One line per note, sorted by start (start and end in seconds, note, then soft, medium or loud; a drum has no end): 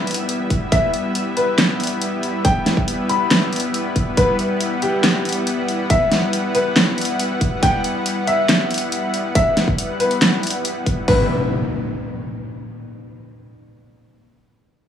0.00 11.04 G3 medium
0.00 11.04 B3 medium
0.00 11.04 E4 medium
0.00 0.63 B4 medium
0.00 11.04 B4 medium
0.00 4.16 E5 medium
0.00 downlifter medium
0.07 closed hi-hat medium
0.11 closed hi-hat medium
0.14 closed hi-hat medium
0.29 closed hi-hat medium
0.50 kick medium
0.50 closed hi-hat medium
0.72 0.89 E5 loud
0.72 kick loud
0.72 closed hi-hat medium
0.94 closed hi-hat soft
1.15 closed hi-hat medium
1.37 2.36 B4 medium
1.37 closed hi-hat soft
1.58 snare loud
1.58 clap medium
1.58 closed hi-hat medium
1.80 closed hi-hat soft
1.84 closed hi-hat medium
1.87 closed hi-hat medium
2.02 closed hi-hat medium
2.23 closed hi-hat soft
2.45 2.61 G5 loud
2.45 kick loud
2.45 closed hi-hat medium
2.66 snare medium
2.66 closed hi-hat medium
2.77 kick medium
2.88 closed hi-hat medium
3.09 4.09 B5 medium
3.09 closed hi-hat soft
3.31 snare loud
3.31 clap medium
3.31 closed hi-hat medium
3.53 closed hi-hat soft
3.56 closed hi-hat medium
3.60 closed hi-hat medium
3.74 closed hi-hat medium
3.96 kick medium
3.96 closed hi-hat soft
4.17 4.34 B4 loud
4.17 11.06 F#5 medium
4.17 kick loud
4.17 closed hi-hat medium
4.39 closed hi-hat medium
4.60 closed hi-hat medium
4.82 5.81 G4 medium
4.82 closed hi-hat soft
5.04 snare loud
5.04 clap medium
5.04 closed hi-hat medium
5.25 closed hi-hat soft
5.29 closed hi-hat medium
5.32 closed hi-hat medium
5.47 closed hi-hat medium
5.68 closed hi-hat medium
5.90 6.07 E5 loud
5.90 kick loud
5.90 closed hi-hat medium
6.12 snare medium
6.12 closed hi-hat soft
6.33 closed hi-hat medium
6.55 7.54 B4 medium
6.55 closed hi-hat medium
6.76 snare loud
6.76 clap medium
6.76 closed hi-hat medium
6.98 closed hi-hat soft
7.01 closed hi-hat medium
7.05 closed hi-hat medium
7.20 closed hi-hat medium
7.41 kick medium
7.41 closed hi-hat medium
7.63 7.80 G5 loud
7.63 kick loud
7.63 closed hi-hat medium
7.84 closed hi-hat medium
8.06 closed hi-hat medium
8.27 9.27 E5 medium
8.27 closed hi-hat medium
8.49 snare loud
8.49 clap medium
8.49 closed hi-hat medium
8.71 closed hi-hat soft
8.74 closed hi-hat medium
8.78 closed hi-hat medium
8.92 closed hi-hat medium
9.14 closed hi-hat medium
9.35 9.52 E5 loud
9.35 kick loud
9.35 closed hi-hat medium
9.57 snare medium
9.57 closed hi-hat medium
9.68 kick medium
9.78 closed hi-hat medium
10.00 10.99 B4 medium
10.00 closed hi-hat medium
10.11 closed hi-hat soft
10.22 snare loud
10.22 clap medium
10.22 closed hi-hat medium
10.43 closed hi-hat medium
10.47 closed hi-hat medium
10.50 closed hi-hat medium
10.65 closed hi-hat medium
10.86 kick medium
10.86 closed hi-hat medium
11.08 11.28 G3 medium
11.08 11.28 B3 medium
11.08 11.28 E4 medium
11.08 11.28 B4 medium
11.08 11.24 B4 medium
11.08 11.28 E5 medium
11.08 kick loud
11.08 open hi-hat medium
11.08 impact medium